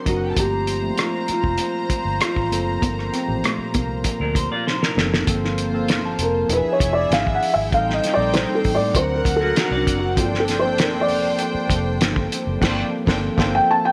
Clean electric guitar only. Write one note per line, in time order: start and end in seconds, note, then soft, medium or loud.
4.21 4.35 D4 soft
4.21 4.35 A#4 medium
4.37 4.51 C5 medium
4.52 4.66 F4 medium
4.52 4.66 D5 medium
4.67 4.81 C5 medium
4.82 5.26 D4 soft
4.82 5.25 A#4 medium
9.41 9.56 A#3 medium
9.41 9.55 F#4 medium
9.56 9.71 D4 medium
9.56 9.71 A#4 medium
9.72 10.15 F#4 medium
9.72 10.15 D5 soft